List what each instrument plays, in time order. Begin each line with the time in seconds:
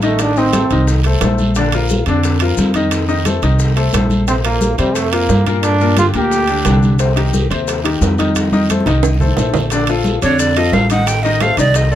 Already playing: upright bass A1
0.02 upright piano D#3 D#4 D#5, trombone A3, high bongo, high timbale, short guiro, maracas
0.19 trombone D4, high bongo, high conga, high timbale, long guiro, maracas
0.36 upright piano D#3 D#4 D#5, trombone C4, high bongo, high conga, maracas
0.53 upright piano A3 A4 C5, high bongo, high conga, high timbale, short guiro, maracas
0.70 upright bass C2, upright piano D#3 D#4 D#5, high bongo, high conga, high timbale, short guiro, maracas
0.87 high bongo, high conga, long guiro, maracas
1.04 upright piano A3 A4 C5, high bongo, high conga, high timbale, maracas
1.21 upright bass A#1, upright piano A3 A4 C5, high bongo, low bongo, high conga, high timbale, low timbale, short guiro, maracas
1.38 high conga, short guiro, maracas
1.55 upright piano D3 D4 D5, high bongo, high timbale, long guiro, maracas
1.72 upright piano F3 F4 A#4, high bongo, high conga, high timbale, maracas
1.89 high bongo, high conga, short guiro, maracas
2.06 upright bass F2, upright piano D3 D4 D5, high bongo, high timbale, short guiro, maracas
2.23 high bongo, high conga, high timbale, long guiro, maracas
2.40 upright piano F3 F4 A#4, high conga, high timbale, maracas
2.57 upright bass F2, high bongo, low bongo, high conga, short guiro, maracas
2.74 upright piano D#3 D#4 D#5, high bongo, high conga, high timbale, short guiro, maracas
2.91 high bongo, high timbale, long guiro, maracas
3.08 upright piano D#3 D#4 D#5, high bongo, high conga, maracas
3.25 upright piano A3 A4 C5, high bongo, high conga, high timbale, short guiro, maracas
3.42 upright bass C2, upright piano D#3 D#4 D#5, high bongo, high conga, high timbale, short guiro, maracas
3.59 high bongo, high conga, long guiro, maracas
3.76 upright piano A3 A4 C5, high bongo, high conga, high timbale, maracas
3.93 upright bass A#1, upright piano A3 A4 C5, high bongo, low bongo, high conga, high timbale, low timbale, short guiro, maracas
4.10 high conga, short guiro, maracas
4.28 upright piano C3 C4 C5, trombone C4, high bongo, high timbale, long guiro, maracas
4.44 upright piano F3 F4 A#4, trombone A#3, high bongo, high conga, high timbale, maracas
4.61 high bongo, high conga, short guiro, maracas
4.78 upright bass F2, upright piano C3 C4 C5, trombone G3, high bongo, high timbale, short guiro, maracas
4.95 trombone A3, high bongo, high conga, high timbale, long guiro, maracas
5.12 upright piano F3 F4 A#4, trombone A#3, high conga, high timbale, maracas
5.29 upright bass G2, high bongo, low bongo, high conga, low timbale, short guiro, maracas
5.46 upright piano A#2 A#3 A#4, high bongo, high conga, high timbale, short guiro, maracas
5.63 trombone D4, high bongo, high timbale, long guiro, maracas
5.80 upright piano A#2 A#3 A#4, high bongo, high conga, maracas
5.97 upright piano D3 D4 G4, trombone F4, high bongo, high conga, high timbale, short guiro, maracas
6.14 upright bass D2, upright piano A#2 A#3 A#4, trombone G4, high bongo, high conga, high timbale, short guiro, maracas
6.31 high bongo, high conga, long guiro, maracas
6.47 upright piano D3 D4 G4, high bongo, high conga, high timbale, maracas
6.65 upright bass C2, upright piano D3 D4 G4, high bongo, low bongo, high conga, high timbale, low timbale, short guiro, maracas
6.83 high conga, short guiro, maracas
6.99 upright piano C3 C4 C5, high bongo, high timbale, long guiro, maracas
7.16 upright piano D#3 D#4 G4, high bongo, high conga, high timbale, maracas
7.33 high bongo, high conga, short guiro, maracas
7.50 upright bass D#2, upright piano C3 C4 C5, high bongo, high timbale, short guiro, maracas
7.68 high bongo, high conga, high timbale, long guiro, maracas
7.84 upright piano D#3 D#4 G4, high conga, high timbale, maracas
8.01 upright bass F2, high bongo, low bongo, high conga, low timbale, short guiro, maracas
8.18 upright piano D#3 D#4 D#5, high bongo, high conga, high timbale, short guiro, maracas
8.35 high bongo, high conga, high timbale, long guiro, maracas
8.52 upright piano D#3 D#4 D#5, high bongo, high conga, maracas
8.70 upright piano A3 A4 C5, high bongo, high conga, high timbale, short guiro, maracas
8.80 high bongo
8.86 upright bass C2, upright piano D#3 D#4 D#5, low conga, high timbale, short guiro, maracas
9.03 low bongo, low conga, high timbale, long guiro, maracas
9.14 low bongo
9.20 upright piano A3 A4 C5, low conga, maracas
9.26 low bongo
9.37 upright bass A#1, upright piano A3 A4 C5, low bongo, low conga, low timbale, short guiro, maracas
9.49 low bongo
9.54 low conga, low timbale, short guiro, maracas
9.60 low bongo
9.70 upright piano D3 D4 D5, high bongo, high conga, high timbale, long guiro, maracas
9.87 upright piano F3 F4 A4, high conga, high timbale, maracas
10.05 high bongo, high conga, low timbale, short guiro, maracas
10.22 upright bass F2, upright piano D3 D4 D5, flute C#5, high conga, high timbale, short guiro, maracas
10.38 flute D5, high bongo, high conga, high timbale, long guiro, maracas
10.56 upright piano F3 F4 A4, flute D#5, high conga, high timbale, maracas
10.72 upright bass A1, flute F5, high bongo, low bongo, high conga, low timbale, short guiro, maracas
10.90 upright piano D#3 D#4 D#5, flute F#5, high conga, high timbale, short guiro, maracas
11.06 flute G5, high bongo, high timbale, long guiro, maracas
11.23 upright piano D#3 D#4 D#5, flute D#5, high bongo, high conga, maracas
11.40 upright piano A3 A4 C5, flute F5, high bongo, high conga, high timbale, low timbale, short guiro, maracas
11.57 upright bass C2, upright piano D#3 D#4 D#5, flute D5, high bongo, high conga, high timbale, short guiro, maracas
11.74 flute D#5, high bongo, high conga, high timbale, long guiro, maracas
11.91 upright piano A3 A4, flute D5, high conga